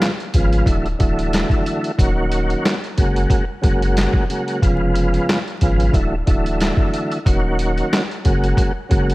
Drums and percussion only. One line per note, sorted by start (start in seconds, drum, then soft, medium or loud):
0.02 snare loud
0.02 clap medium
0.02 closed hi-hat medium
0.20 closed hi-hat soft
0.34 kick medium
0.34 closed hi-hat medium
0.53 closed hi-hat medium
0.66 kick loud
0.66 closed hi-hat medium
0.86 closed hi-hat soft
1.00 kick medium
1.00 closed hi-hat medium
1.19 closed hi-hat medium
1.33 snare loud
1.33 clap medium
1.33 closed hi-hat loud
1.50 kick medium
1.50 closed hi-hat soft
1.66 closed hi-hat medium
1.84 closed hi-hat medium
1.99 kick loud
1.99 closed hi-hat loud
2.32 closed hi-hat medium
2.50 closed hi-hat soft
2.65 snare loud
2.65 clap medium
2.65 closed hi-hat medium
2.84 closed hi-hat soft
2.98 kick medium
2.98 closed hi-hat medium
3.16 closed hi-hat medium
3.30 kick loud
3.30 closed hi-hat medium
3.64 kick medium
3.64 closed hi-hat medium
3.82 closed hi-hat medium
3.97 snare loud
3.97 clap medium
3.97 closed hi-hat loud
4.13 kick medium
4.30 closed hi-hat medium
4.48 closed hi-hat medium
4.62 kick loud
4.62 closed hi-hat loud
4.95 closed hi-hat medium
5.14 closed hi-hat soft
5.29 snare loud
5.29 clap medium
5.29 closed hi-hat medium
5.48 closed hi-hat soft
5.61 kick medium
5.61 closed hi-hat medium
5.80 closed hi-hat medium
5.94 kick loud
5.94 closed hi-hat medium
6.27 kick medium
6.27 closed hi-hat medium
6.46 closed hi-hat medium
6.60 snare loud
6.60 clap medium
6.60 closed hi-hat medium
6.77 kick medium
6.94 closed hi-hat medium
7.12 closed hi-hat medium
7.26 kick loud
7.26 closed hi-hat loud
7.59 closed hi-hat medium
7.78 closed hi-hat soft
7.93 snare loud
7.93 clap medium
7.93 closed hi-hat medium
8.11 closed hi-hat soft
8.25 kick medium
8.25 closed hi-hat medium
8.44 closed hi-hat medium
8.57 kick medium
8.57 closed hi-hat medium
8.91 kick medium
8.91 closed hi-hat medium
9.10 closed hi-hat medium